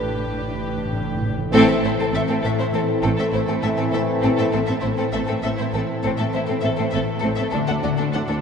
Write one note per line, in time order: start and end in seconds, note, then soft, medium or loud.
0.00 1.29 A1 medium
0.00 1.29 A2 medium
0.00 0.62 A2 soft
0.00 0.09 A2 soft
0.00 0.32 A3 soft
0.00 1.30 D4 soft
0.00 1.29 G4 soft
0.00 1.30 B4 soft
0.10 0.17 A2 soft
0.18 0.24 A2 soft
0.25 0.32 A2 medium
0.33 0.39 A2 medium
0.33 1.23 A3 soft
0.40 0.47 A2 medium
0.48 0.53 A2 medium
0.55 0.61 A2 medium
0.62 0.69 A2 medium
0.62 0.92 A2 soft
0.70 0.77 A2 medium
0.78 0.84 A2 medium
0.85 0.91 A2 medium
0.92 0.99 A2 medium
0.92 1.52 A2 soft
1.00 1.06 A2 medium
1.08 1.13 A2 medium
1.15 1.21 A2 medium
1.22 1.28 A2 medium
1.22 2.12 A3 soft
1.30 1.37 A2 medium
1.38 1.44 A2 medium
1.46 1.53 A2 medium
1.51 1.67 A1 medium
1.51 1.67 A2 medium
1.51 1.82 A2 medium
1.51 4.48 E3 medium
1.51 4.48 A3 medium
1.51 1.67 C4 medium
1.51 4.49 C4 medium
1.51 4.49 E4 medium
1.51 1.67 A4 medium
1.68 1.74 A2 medium
1.68 1.75 C4 soft
1.68 1.74 A4 soft
1.68 1.75 E5 medium
1.83 1.89 A1 soft
1.83 2.43 A2 medium
1.83 1.90 A2 medium
1.83 1.90 C4 medium
1.83 1.90 E4 soft
1.83 1.91 C5 medium
1.97 2.05 A2 medium
1.97 2.03 C4 medium
1.97 2.06 C4 medium
1.97 2.06 A4 medium
2.13 2.19 A1 medium
2.13 2.19 A2 medium
2.13 3.33 A3 medium
2.13 2.20 C4 soft
2.13 2.20 A4 medium
2.13 2.20 E5 medium
2.28 2.34 A2 medium
2.28 2.34 C4 medium
2.28 2.35 C4 medium
2.28 2.34 A4 medium
2.42 2.49 A1 medium
2.42 2.49 A2 medium
2.42 2.73 A2 medium
2.42 2.50 C4 soft
2.42 2.49 A4 soft
2.42 2.51 E5 medium
2.58 2.64 A2 medium
2.58 2.66 C4 medium
2.58 2.64 E4 soft
2.58 2.65 C5 medium
2.73 2.79 A1 medium
2.73 2.79 A2 medium
2.73 3.03 A2 medium
2.73 2.79 C4 medium
2.73 2.80 C4 medium
2.73 2.80 A4 medium
3.02 3.09 A1 medium
3.02 3.10 A2 medium
3.02 3.63 A2 medium
3.02 3.09 C4 medium
3.02 3.10 C4 medium
3.02 3.09 A4 medium
3.17 3.24 A2 medium
3.17 3.25 C4 medium
3.17 3.24 A4 medium
3.17 3.25 E5 medium
3.32 3.39 A1 medium
3.32 3.39 A2 medium
3.32 4.22 A3 medium
3.32 3.40 C4 medium
3.32 3.38 E4 medium
3.32 3.40 C5 medium
3.47 3.54 A2 medium
3.47 3.53 C4 medium
3.47 3.54 C4 medium
3.47 3.54 A4 medium
3.62 3.69 A1 medium
3.62 3.69 A2 medium
3.62 3.92 A2 medium
3.62 3.70 C4 medium
3.62 3.68 A4 medium
3.62 3.68 E5 medium
3.77 3.84 A2 medium
3.77 3.83 C4 medium
3.77 3.85 C4 medium
3.77 3.83 A4 medium
3.92 3.99 A1 soft
3.92 3.99 A2 medium
3.92 4.52 A2 medium
3.92 4.00 C4 medium
3.92 3.98 A4 medium
3.92 3.99 E5 medium
4.22 4.28 A1 medium
4.22 4.30 A2 medium
4.22 5.13 A3 medium
4.22 4.28 C4 medium
4.22 4.31 C4 medium
4.22 4.29 A4 medium
4.37 4.44 A2 medium
4.37 4.45 C4 medium
4.37 4.43 A4 medium
4.37 4.45 E5 medium
4.52 4.59 A1 medium
4.52 4.59 A2 medium
4.52 4.83 A2 medium
4.52 7.49 E3 medium
4.52 8.41 A3 medium
4.52 4.58 C4 medium
4.52 7.50 C4 medium
4.52 4.61 C4 medium
4.52 7.50 E4 medium
4.52 4.59 A4 medium
4.66 4.75 A2 medium
4.66 4.76 C4 soft
4.66 4.74 A4 soft
4.66 4.73 E5 soft
4.81 4.90 A1 soft
4.81 4.90 A2 soft
4.81 5.43 A2 medium
4.81 4.88 E4 soft
4.81 4.87 C5 soft
4.86 4.91 C4 medium
4.97 5.04 A2 medium
4.97 5.03 C4 medium
4.97 5.06 C4 medium
4.97 5.04 A4 medium
5.12 5.19 A1 medium
5.12 5.20 A2 medium
5.12 6.34 A3 medium
5.12 5.21 C4 soft
5.12 5.19 A4 soft
5.12 5.19 E5 medium
5.26 5.35 A2 medium
5.26 5.34 C4 medium
5.26 5.33 A4 medium
5.30 5.36 C4 medium
5.43 5.49 A1 soft
5.43 5.49 A2 medium
5.43 5.74 A2 medium
5.43 5.51 C4 medium
5.43 5.50 A4 medium
5.43 5.49 E5 medium
5.58 5.65 A2 soft
5.58 5.66 C4 medium
5.58 5.64 E4 medium
5.58 5.65 C5 soft
5.73 5.79 A1 medium
5.73 5.80 A2 medium
5.73 6.04 A2 medium
5.73 5.80 C4 medium
5.73 5.79 A4 medium
6.03 6.09 A1 medium
6.03 6.10 A2 medium
6.03 6.63 A2 medium
6.03 6.10 C4 medium
6.03 6.09 A4 medium
6.17 6.25 A2 medium
6.17 6.25 C4 soft
6.17 6.24 A4 medium
6.17 6.23 E5 medium
6.33 6.39 A1 medium
6.33 6.39 A2 medium
6.33 7.23 A3 medium
6.33 6.40 C4 medium
6.33 6.40 E4 medium
6.33 6.39 C5 soft
6.46 6.54 A2 medium
6.46 6.54 C4 medium
6.46 6.55 C4 medium
6.46 6.53 A4 medium
6.61 6.69 A1 medium
6.61 6.69 A2 medium
6.61 6.93 A2 medium
6.61 6.69 C4 medium
6.61 6.70 A4 medium
6.61 6.67 E5 medium
6.76 6.84 A2 medium
6.76 6.84 C4 medium
6.76 6.85 C4 medium
6.76 6.83 A4 medium
6.91 6.99 A1 medium
6.91 6.99 A2 medium
6.91 7.56 A2 medium
6.91 7.00 C4 medium
6.91 7.00 A4 medium
6.91 6.98 E5 medium
7.19 7.29 A1 medium
7.19 7.28 C4 medium
7.19 7.26 A4 medium
7.24 7.30 A2 medium
7.24 8.41 A3 medium
7.24 7.30 C4 medium
7.35 7.44 A4 medium
7.35 7.42 E5 medium
7.39 7.45 A2 medium
7.39 7.45 C4 medium
7.51 7.59 D2 medium
7.51 7.60 D2 medium
7.51 8.41 D3 medium
7.51 7.83 D3 medium
7.51 7.59 D4 medium
7.51 8.41 D4 medium
7.51 7.59 D4 medium
7.51 8.41 F#4 medium
7.51 7.57 A4 medium
7.67 7.75 D2 medium
7.67 7.75 D4 medium
7.67 7.74 A4 soft
7.67 7.73 F#5 soft
7.83 7.89 D2 medium
7.83 7.90 D2 soft
7.83 8.41 D3 medium
7.83 7.89 D4 soft
7.83 7.89 F#4 medium
7.83 7.89 D5 medium
7.97 8.05 D2 medium
7.97 8.04 D4 medium
7.97 8.05 D4 medium
7.97 8.03 A4 medium
8.12 8.20 D2 medium
8.12 8.41 D4 medium
8.12 8.21 D4 medium
8.12 8.18 A4 soft
8.12 8.19 F#5 soft
8.28 8.35 D2 medium
8.28 8.34 D4 medium
8.28 8.36 D4 medium
8.28 8.34 A4 medium